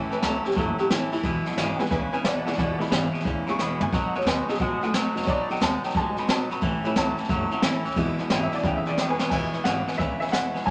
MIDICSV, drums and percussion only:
0, 0, Header, 1, 2, 480
1, 0, Start_track
1, 0, Key_signature, 4, "major"
1, 0, Tempo, 336889
1, 1762, Time_signature, 4, 2, 24, 8
1, 15251, End_track
2, 0, Start_track
2, 0, Title_t, "Drums"
2, 163, Note_on_c, 9, 38, 36
2, 306, Note_off_c, 9, 38, 0
2, 319, Note_on_c, 9, 38, 126
2, 319, Note_on_c, 9, 44, 88
2, 461, Note_off_c, 9, 38, 0
2, 461, Note_off_c, 9, 44, 0
2, 639, Note_on_c, 9, 38, 39
2, 726, Note_off_c, 9, 38, 0
2, 726, Note_on_c, 9, 38, 39
2, 804, Note_on_c, 9, 36, 121
2, 807, Note_off_c, 9, 38, 0
2, 807, Note_on_c, 9, 38, 35
2, 946, Note_off_c, 9, 36, 0
2, 950, Note_off_c, 9, 38, 0
2, 1114, Note_on_c, 9, 38, 34
2, 1257, Note_off_c, 9, 38, 0
2, 1288, Note_on_c, 9, 38, 127
2, 1288, Note_on_c, 9, 44, 97
2, 1431, Note_off_c, 9, 38, 0
2, 1431, Note_off_c, 9, 44, 0
2, 1592, Note_on_c, 9, 38, 37
2, 1676, Note_off_c, 9, 38, 0
2, 1676, Note_on_c, 9, 38, 34
2, 1756, Note_off_c, 9, 38, 0
2, 1756, Note_on_c, 9, 38, 34
2, 1760, Note_on_c, 9, 36, 111
2, 1899, Note_off_c, 9, 38, 0
2, 1903, Note_off_c, 9, 36, 0
2, 2070, Note_on_c, 9, 38, 37
2, 2157, Note_off_c, 9, 38, 0
2, 2157, Note_on_c, 9, 38, 32
2, 2245, Note_off_c, 9, 38, 0
2, 2245, Note_on_c, 9, 38, 108
2, 2245, Note_on_c, 9, 44, 88
2, 2387, Note_off_c, 9, 38, 0
2, 2387, Note_off_c, 9, 44, 0
2, 2551, Note_on_c, 9, 38, 38
2, 2644, Note_off_c, 9, 38, 0
2, 2644, Note_on_c, 9, 38, 37
2, 2720, Note_off_c, 9, 38, 0
2, 2720, Note_on_c, 9, 38, 35
2, 2721, Note_on_c, 9, 36, 107
2, 2862, Note_off_c, 9, 38, 0
2, 2864, Note_off_c, 9, 36, 0
2, 3034, Note_on_c, 9, 38, 33
2, 3177, Note_off_c, 9, 38, 0
2, 3200, Note_on_c, 9, 38, 123
2, 3200, Note_on_c, 9, 44, 93
2, 3342, Note_off_c, 9, 38, 0
2, 3342, Note_off_c, 9, 44, 0
2, 3514, Note_on_c, 9, 38, 40
2, 3598, Note_off_c, 9, 38, 0
2, 3598, Note_on_c, 9, 38, 38
2, 3678, Note_off_c, 9, 38, 0
2, 3678, Note_on_c, 9, 36, 108
2, 3678, Note_on_c, 9, 38, 35
2, 3820, Note_off_c, 9, 38, 0
2, 3821, Note_off_c, 9, 36, 0
2, 3995, Note_on_c, 9, 38, 40
2, 4079, Note_off_c, 9, 38, 0
2, 4079, Note_on_c, 9, 38, 30
2, 4158, Note_off_c, 9, 38, 0
2, 4158, Note_on_c, 9, 38, 110
2, 4158, Note_on_c, 9, 44, 84
2, 4301, Note_off_c, 9, 38, 0
2, 4301, Note_off_c, 9, 44, 0
2, 4473, Note_on_c, 9, 38, 38
2, 4553, Note_off_c, 9, 38, 0
2, 4553, Note_on_c, 9, 38, 40
2, 4632, Note_off_c, 9, 38, 0
2, 4632, Note_on_c, 9, 38, 36
2, 4634, Note_on_c, 9, 36, 112
2, 4774, Note_off_c, 9, 38, 0
2, 4777, Note_off_c, 9, 36, 0
2, 4952, Note_on_c, 9, 38, 36
2, 5094, Note_off_c, 9, 38, 0
2, 5112, Note_on_c, 9, 38, 76
2, 5112, Note_on_c, 9, 44, 98
2, 5255, Note_off_c, 9, 38, 0
2, 5255, Note_off_c, 9, 44, 0
2, 5425, Note_on_c, 9, 43, 95
2, 5568, Note_off_c, 9, 43, 0
2, 5593, Note_on_c, 9, 36, 115
2, 5598, Note_on_c, 9, 38, 34
2, 5736, Note_off_c, 9, 36, 0
2, 5740, Note_off_c, 9, 38, 0
2, 5915, Note_on_c, 9, 38, 35
2, 5997, Note_off_c, 9, 38, 0
2, 5997, Note_on_c, 9, 38, 34
2, 6079, Note_off_c, 9, 38, 0
2, 6079, Note_on_c, 9, 38, 122
2, 6079, Note_on_c, 9, 44, 94
2, 6222, Note_off_c, 9, 38, 0
2, 6222, Note_off_c, 9, 44, 0
2, 6394, Note_on_c, 9, 38, 42
2, 6472, Note_off_c, 9, 38, 0
2, 6472, Note_on_c, 9, 38, 43
2, 6552, Note_off_c, 9, 38, 0
2, 6552, Note_on_c, 9, 38, 33
2, 6554, Note_on_c, 9, 36, 114
2, 6695, Note_off_c, 9, 38, 0
2, 6696, Note_off_c, 9, 36, 0
2, 6874, Note_on_c, 9, 38, 35
2, 7016, Note_off_c, 9, 38, 0
2, 7037, Note_on_c, 9, 38, 127
2, 7037, Note_on_c, 9, 44, 103
2, 7179, Note_off_c, 9, 38, 0
2, 7179, Note_off_c, 9, 44, 0
2, 7354, Note_on_c, 9, 38, 39
2, 7439, Note_off_c, 9, 38, 0
2, 7439, Note_on_c, 9, 38, 37
2, 7511, Note_off_c, 9, 38, 0
2, 7511, Note_on_c, 9, 38, 33
2, 7514, Note_on_c, 9, 36, 113
2, 7653, Note_off_c, 9, 38, 0
2, 7656, Note_off_c, 9, 36, 0
2, 7835, Note_on_c, 9, 38, 37
2, 7915, Note_off_c, 9, 38, 0
2, 7915, Note_on_c, 9, 38, 30
2, 8001, Note_off_c, 9, 38, 0
2, 8001, Note_on_c, 9, 38, 117
2, 8001, Note_on_c, 9, 44, 98
2, 8143, Note_off_c, 9, 38, 0
2, 8143, Note_off_c, 9, 44, 0
2, 8312, Note_on_c, 9, 38, 38
2, 8401, Note_off_c, 9, 38, 0
2, 8401, Note_on_c, 9, 38, 40
2, 8475, Note_on_c, 9, 36, 112
2, 8480, Note_off_c, 9, 38, 0
2, 8480, Note_on_c, 9, 38, 38
2, 8617, Note_off_c, 9, 36, 0
2, 8622, Note_off_c, 9, 38, 0
2, 8787, Note_on_c, 9, 38, 34
2, 8930, Note_off_c, 9, 38, 0
2, 8957, Note_on_c, 9, 38, 127
2, 8957, Note_on_c, 9, 44, 97
2, 9099, Note_off_c, 9, 38, 0
2, 9099, Note_off_c, 9, 44, 0
2, 9272, Note_on_c, 9, 38, 37
2, 9415, Note_off_c, 9, 38, 0
2, 9433, Note_on_c, 9, 36, 115
2, 9437, Note_on_c, 9, 38, 35
2, 9576, Note_off_c, 9, 36, 0
2, 9580, Note_off_c, 9, 38, 0
2, 9748, Note_on_c, 9, 38, 37
2, 9890, Note_off_c, 9, 38, 0
2, 9916, Note_on_c, 9, 38, 109
2, 9916, Note_on_c, 9, 44, 90
2, 10058, Note_off_c, 9, 38, 0
2, 10058, Note_off_c, 9, 44, 0
2, 10224, Note_on_c, 9, 38, 43
2, 10311, Note_off_c, 9, 38, 0
2, 10311, Note_on_c, 9, 38, 41
2, 10387, Note_off_c, 9, 38, 0
2, 10387, Note_on_c, 9, 38, 38
2, 10392, Note_on_c, 9, 36, 118
2, 10529, Note_off_c, 9, 38, 0
2, 10534, Note_off_c, 9, 36, 0
2, 10699, Note_on_c, 9, 38, 35
2, 10842, Note_off_c, 9, 38, 0
2, 10862, Note_on_c, 9, 38, 121
2, 10862, Note_on_c, 9, 44, 105
2, 11005, Note_off_c, 9, 38, 0
2, 11005, Note_off_c, 9, 44, 0
2, 11179, Note_on_c, 9, 38, 41
2, 11267, Note_off_c, 9, 38, 0
2, 11267, Note_on_c, 9, 38, 37
2, 11343, Note_off_c, 9, 38, 0
2, 11343, Note_on_c, 9, 38, 36
2, 11347, Note_on_c, 9, 36, 111
2, 11485, Note_off_c, 9, 38, 0
2, 11490, Note_off_c, 9, 36, 0
2, 11658, Note_on_c, 9, 38, 39
2, 11801, Note_off_c, 9, 38, 0
2, 11827, Note_on_c, 9, 38, 114
2, 11827, Note_on_c, 9, 44, 90
2, 11969, Note_off_c, 9, 38, 0
2, 11969, Note_off_c, 9, 44, 0
2, 12134, Note_on_c, 9, 38, 38
2, 12219, Note_off_c, 9, 38, 0
2, 12219, Note_on_c, 9, 38, 41
2, 12299, Note_off_c, 9, 38, 0
2, 12299, Note_on_c, 9, 38, 34
2, 12304, Note_on_c, 9, 36, 118
2, 12442, Note_off_c, 9, 38, 0
2, 12446, Note_off_c, 9, 36, 0
2, 12618, Note_on_c, 9, 38, 37
2, 12760, Note_off_c, 9, 38, 0
2, 12787, Note_on_c, 9, 38, 77
2, 12787, Note_on_c, 9, 44, 98
2, 12930, Note_off_c, 9, 38, 0
2, 12930, Note_off_c, 9, 44, 0
2, 13098, Note_on_c, 9, 38, 110
2, 13240, Note_off_c, 9, 38, 0
2, 13265, Note_on_c, 9, 38, 34
2, 13265, Note_on_c, 9, 49, 102
2, 13268, Note_on_c, 9, 36, 111
2, 13407, Note_off_c, 9, 38, 0
2, 13407, Note_off_c, 9, 49, 0
2, 13410, Note_off_c, 9, 36, 0
2, 13580, Note_on_c, 9, 38, 40
2, 13723, Note_off_c, 9, 38, 0
2, 13749, Note_on_c, 9, 38, 103
2, 13749, Note_on_c, 9, 44, 83
2, 13891, Note_off_c, 9, 38, 0
2, 13891, Note_off_c, 9, 44, 0
2, 14069, Note_on_c, 9, 38, 37
2, 14146, Note_off_c, 9, 38, 0
2, 14146, Note_on_c, 9, 38, 41
2, 14235, Note_on_c, 9, 36, 107
2, 14237, Note_off_c, 9, 38, 0
2, 14237, Note_on_c, 9, 38, 35
2, 14377, Note_off_c, 9, 36, 0
2, 14379, Note_off_c, 9, 38, 0
2, 14548, Note_on_c, 9, 38, 34
2, 14634, Note_off_c, 9, 38, 0
2, 14634, Note_on_c, 9, 38, 39
2, 14719, Note_off_c, 9, 38, 0
2, 14719, Note_on_c, 9, 38, 123
2, 14719, Note_on_c, 9, 44, 96
2, 14862, Note_off_c, 9, 38, 0
2, 14862, Note_off_c, 9, 44, 0
2, 15038, Note_on_c, 9, 38, 38
2, 15121, Note_off_c, 9, 38, 0
2, 15121, Note_on_c, 9, 38, 38
2, 15199, Note_on_c, 9, 36, 117
2, 15204, Note_off_c, 9, 38, 0
2, 15204, Note_on_c, 9, 38, 34
2, 15251, Note_off_c, 9, 36, 0
2, 15251, Note_off_c, 9, 38, 0
2, 15251, End_track
0, 0, End_of_file